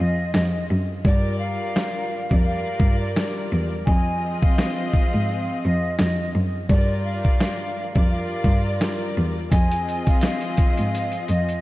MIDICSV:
0, 0, Header, 1, 5, 480
1, 0, Start_track
1, 0, Tempo, 705882
1, 712, Time_signature, 4, 2, 24, 8
1, 7895, End_track
2, 0, Start_track
2, 0, Title_t, "Flute"
2, 0, Program_c, 0, 73
2, 0, Note_on_c, 0, 75, 91
2, 211, Note_off_c, 0, 75, 0
2, 236, Note_on_c, 0, 75, 78
2, 450, Note_off_c, 0, 75, 0
2, 712, Note_on_c, 0, 74, 111
2, 928, Note_off_c, 0, 74, 0
2, 943, Note_on_c, 0, 77, 88
2, 1640, Note_off_c, 0, 77, 0
2, 1659, Note_on_c, 0, 77, 82
2, 2018, Note_off_c, 0, 77, 0
2, 2041, Note_on_c, 0, 74, 74
2, 2138, Note_off_c, 0, 74, 0
2, 2626, Note_on_c, 0, 80, 99
2, 2982, Note_off_c, 0, 80, 0
2, 3001, Note_on_c, 0, 77, 92
2, 3801, Note_off_c, 0, 77, 0
2, 3839, Note_on_c, 0, 75, 85
2, 4052, Note_off_c, 0, 75, 0
2, 4074, Note_on_c, 0, 75, 83
2, 4289, Note_off_c, 0, 75, 0
2, 4552, Note_on_c, 0, 74, 115
2, 4768, Note_off_c, 0, 74, 0
2, 4789, Note_on_c, 0, 77, 81
2, 5483, Note_off_c, 0, 77, 0
2, 5507, Note_on_c, 0, 77, 76
2, 5862, Note_off_c, 0, 77, 0
2, 5901, Note_on_c, 0, 74, 73
2, 5989, Note_off_c, 0, 74, 0
2, 6469, Note_on_c, 0, 80, 94
2, 6823, Note_off_c, 0, 80, 0
2, 6851, Note_on_c, 0, 77, 86
2, 7647, Note_off_c, 0, 77, 0
2, 7676, Note_on_c, 0, 75, 88
2, 7890, Note_off_c, 0, 75, 0
2, 7895, End_track
3, 0, Start_track
3, 0, Title_t, "String section"
3, 0, Program_c, 1, 48
3, 0, Note_on_c, 1, 53, 101
3, 0, Note_on_c, 1, 60, 99
3, 0, Note_on_c, 1, 65, 98
3, 0, Note_on_c, 1, 68, 88
3, 0, Note_on_c, 1, 75, 107
3, 564, Note_off_c, 1, 53, 0
3, 565, Note_off_c, 1, 60, 0
3, 566, Note_off_c, 1, 65, 0
3, 567, Note_off_c, 1, 68, 0
3, 569, Note_off_c, 1, 75, 0
3, 720, Note_on_c, 1, 43, 107
3, 722, Note_on_c, 1, 55, 93
3, 725, Note_on_c, 1, 65, 89
3, 727, Note_on_c, 1, 70, 92
3, 729, Note_on_c, 1, 74, 107
3, 1495, Note_off_c, 1, 43, 0
3, 1496, Note_off_c, 1, 55, 0
3, 1498, Note_off_c, 1, 65, 0
3, 1499, Note_off_c, 1, 70, 0
3, 1500, Note_off_c, 1, 74, 0
3, 1553, Note_on_c, 1, 43, 101
3, 1557, Note_on_c, 1, 55, 90
3, 1559, Note_on_c, 1, 65, 94
3, 1562, Note_on_c, 1, 70, 96
3, 1564, Note_on_c, 1, 74, 112
3, 2550, Note_off_c, 1, 43, 0
3, 2551, Note_off_c, 1, 55, 0
3, 2552, Note_off_c, 1, 65, 0
3, 2554, Note_off_c, 1, 70, 0
3, 2555, Note_off_c, 1, 74, 0
3, 2621, Note_on_c, 1, 53, 109
3, 2623, Note_on_c, 1, 60, 99
3, 2626, Note_on_c, 1, 65, 101
3, 2629, Note_on_c, 1, 68, 88
3, 2632, Note_on_c, 1, 75, 112
3, 4404, Note_off_c, 1, 53, 0
3, 4405, Note_off_c, 1, 60, 0
3, 4406, Note_off_c, 1, 65, 0
3, 4408, Note_off_c, 1, 68, 0
3, 4409, Note_off_c, 1, 75, 0
3, 4558, Note_on_c, 1, 43, 104
3, 4561, Note_on_c, 1, 55, 92
3, 4563, Note_on_c, 1, 65, 90
3, 4566, Note_on_c, 1, 70, 94
3, 4568, Note_on_c, 1, 74, 112
3, 5335, Note_off_c, 1, 43, 0
3, 5336, Note_off_c, 1, 55, 0
3, 5337, Note_off_c, 1, 65, 0
3, 5338, Note_off_c, 1, 70, 0
3, 5339, Note_off_c, 1, 74, 0
3, 5391, Note_on_c, 1, 43, 99
3, 5394, Note_on_c, 1, 55, 86
3, 5396, Note_on_c, 1, 65, 97
3, 5400, Note_on_c, 1, 70, 94
3, 5402, Note_on_c, 1, 74, 113
3, 6389, Note_off_c, 1, 43, 0
3, 6390, Note_off_c, 1, 55, 0
3, 6391, Note_off_c, 1, 65, 0
3, 6393, Note_off_c, 1, 70, 0
3, 6394, Note_off_c, 1, 74, 0
3, 6459, Note_on_c, 1, 53, 101
3, 6462, Note_on_c, 1, 60, 103
3, 6465, Note_on_c, 1, 65, 96
3, 6467, Note_on_c, 1, 68, 89
3, 6470, Note_on_c, 1, 75, 112
3, 7895, Note_off_c, 1, 53, 0
3, 7895, Note_off_c, 1, 60, 0
3, 7895, Note_off_c, 1, 65, 0
3, 7895, Note_off_c, 1, 68, 0
3, 7895, Note_off_c, 1, 75, 0
3, 7895, End_track
4, 0, Start_track
4, 0, Title_t, "Cello"
4, 0, Program_c, 2, 42
4, 0, Note_on_c, 2, 41, 96
4, 191, Note_off_c, 2, 41, 0
4, 237, Note_on_c, 2, 41, 90
4, 430, Note_off_c, 2, 41, 0
4, 478, Note_on_c, 2, 42, 99
4, 671, Note_off_c, 2, 42, 0
4, 715, Note_on_c, 2, 43, 102
4, 1019, Note_off_c, 2, 43, 0
4, 1574, Note_on_c, 2, 41, 90
4, 1656, Note_off_c, 2, 41, 0
4, 1904, Note_on_c, 2, 43, 92
4, 2103, Note_off_c, 2, 43, 0
4, 2396, Note_on_c, 2, 40, 96
4, 2590, Note_off_c, 2, 40, 0
4, 2635, Note_on_c, 2, 41, 102
4, 2939, Note_off_c, 2, 41, 0
4, 3493, Note_on_c, 2, 44, 87
4, 3576, Note_off_c, 2, 44, 0
4, 3838, Note_on_c, 2, 41, 95
4, 4031, Note_off_c, 2, 41, 0
4, 4077, Note_on_c, 2, 41, 96
4, 4270, Note_off_c, 2, 41, 0
4, 4318, Note_on_c, 2, 42, 99
4, 4511, Note_off_c, 2, 42, 0
4, 4555, Note_on_c, 2, 43, 100
4, 4859, Note_off_c, 2, 43, 0
4, 5413, Note_on_c, 2, 41, 90
4, 5495, Note_off_c, 2, 41, 0
4, 5744, Note_on_c, 2, 43, 90
4, 5942, Note_off_c, 2, 43, 0
4, 6236, Note_on_c, 2, 40, 93
4, 6429, Note_off_c, 2, 40, 0
4, 6474, Note_on_c, 2, 41, 108
4, 6778, Note_off_c, 2, 41, 0
4, 7332, Note_on_c, 2, 44, 90
4, 7415, Note_off_c, 2, 44, 0
4, 7676, Note_on_c, 2, 41, 94
4, 7870, Note_off_c, 2, 41, 0
4, 7895, End_track
5, 0, Start_track
5, 0, Title_t, "Drums"
5, 231, Note_on_c, 9, 40, 93
5, 235, Note_on_c, 9, 38, 113
5, 299, Note_off_c, 9, 40, 0
5, 303, Note_off_c, 9, 38, 0
5, 712, Note_on_c, 9, 36, 102
5, 780, Note_off_c, 9, 36, 0
5, 1196, Note_on_c, 9, 40, 94
5, 1201, Note_on_c, 9, 38, 118
5, 1264, Note_off_c, 9, 40, 0
5, 1269, Note_off_c, 9, 38, 0
5, 1571, Note_on_c, 9, 36, 86
5, 1639, Note_off_c, 9, 36, 0
5, 1902, Note_on_c, 9, 36, 95
5, 1970, Note_off_c, 9, 36, 0
5, 2152, Note_on_c, 9, 40, 90
5, 2156, Note_on_c, 9, 38, 112
5, 2220, Note_off_c, 9, 40, 0
5, 2224, Note_off_c, 9, 38, 0
5, 2632, Note_on_c, 9, 36, 101
5, 2700, Note_off_c, 9, 36, 0
5, 3009, Note_on_c, 9, 36, 96
5, 3077, Note_off_c, 9, 36, 0
5, 3117, Note_on_c, 9, 40, 97
5, 3121, Note_on_c, 9, 38, 118
5, 3185, Note_off_c, 9, 40, 0
5, 3189, Note_off_c, 9, 38, 0
5, 3356, Note_on_c, 9, 36, 92
5, 3424, Note_off_c, 9, 36, 0
5, 4071, Note_on_c, 9, 40, 92
5, 4075, Note_on_c, 9, 38, 116
5, 4139, Note_off_c, 9, 40, 0
5, 4143, Note_off_c, 9, 38, 0
5, 4552, Note_on_c, 9, 36, 102
5, 4620, Note_off_c, 9, 36, 0
5, 4929, Note_on_c, 9, 36, 98
5, 4997, Note_off_c, 9, 36, 0
5, 5035, Note_on_c, 9, 40, 96
5, 5039, Note_on_c, 9, 38, 114
5, 5103, Note_off_c, 9, 40, 0
5, 5107, Note_off_c, 9, 38, 0
5, 5410, Note_on_c, 9, 36, 87
5, 5478, Note_off_c, 9, 36, 0
5, 5741, Note_on_c, 9, 36, 91
5, 5809, Note_off_c, 9, 36, 0
5, 5991, Note_on_c, 9, 40, 90
5, 5995, Note_on_c, 9, 38, 113
5, 6059, Note_off_c, 9, 40, 0
5, 6063, Note_off_c, 9, 38, 0
5, 6470, Note_on_c, 9, 82, 68
5, 6471, Note_on_c, 9, 36, 98
5, 6474, Note_on_c, 9, 42, 91
5, 6538, Note_off_c, 9, 82, 0
5, 6539, Note_off_c, 9, 36, 0
5, 6542, Note_off_c, 9, 42, 0
5, 6607, Note_on_c, 9, 42, 54
5, 6610, Note_on_c, 9, 82, 49
5, 6675, Note_off_c, 9, 42, 0
5, 6678, Note_off_c, 9, 82, 0
5, 6723, Note_on_c, 9, 42, 62
5, 6791, Note_off_c, 9, 42, 0
5, 6845, Note_on_c, 9, 42, 51
5, 6845, Note_on_c, 9, 82, 56
5, 6848, Note_on_c, 9, 36, 99
5, 6913, Note_off_c, 9, 42, 0
5, 6913, Note_off_c, 9, 82, 0
5, 6916, Note_off_c, 9, 36, 0
5, 6945, Note_on_c, 9, 42, 88
5, 6946, Note_on_c, 9, 82, 76
5, 6955, Note_on_c, 9, 40, 95
5, 6959, Note_on_c, 9, 38, 120
5, 7013, Note_off_c, 9, 42, 0
5, 7014, Note_off_c, 9, 82, 0
5, 7023, Note_off_c, 9, 40, 0
5, 7027, Note_off_c, 9, 38, 0
5, 7079, Note_on_c, 9, 42, 52
5, 7080, Note_on_c, 9, 82, 51
5, 7147, Note_off_c, 9, 42, 0
5, 7148, Note_off_c, 9, 82, 0
5, 7190, Note_on_c, 9, 42, 65
5, 7195, Note_on_c, 9, 36, 93
5, 7258, Note_off_c, 9, 42, 0
5, 7263, Note_off_c, 9, 36, 0
5, 7327, Note_on_c, 9, 42, 59
5, 7327, Note_on_c, 9, 82, 49
5, 7395, Note_off_c, 9, 42, 0
5, 7395, Note_off_c, 9, 82, 0
5, 7433, Note_on_c, 9, 82, 70
5, 7444, Note_on_c, 9, 42, 95
5, 7501, Note_off_c, 9, 82, 0
5, 7512, Note_off_c, 9, 42, 0
5, 7560, Note_on_c, 9, 42, 56
5, 7563, Note_on_c, 9, 82, 53
5, 7628, Note_off_c, 9, 42, 0
5, 7631, Note_off_c, 9, 82, 0
5, 7672, Note_on_c, 9, 42, 85
5, 7675, Note_on_c, 9, 82, 51
5, 7740, Note_off_c, 9, 42, 0
5, 7743, Note_off_c, 9, 82, 0
5, 7806, Note_on_c, 9, 82, 43
5, 7811, Note_on_c, 9, 42, 57
5, 7874, Note_off_c, 9, 82, 0
5, 7879, Note_off_c, 9, 42, 0
5, 7895, End_track
0, 0, End_of_file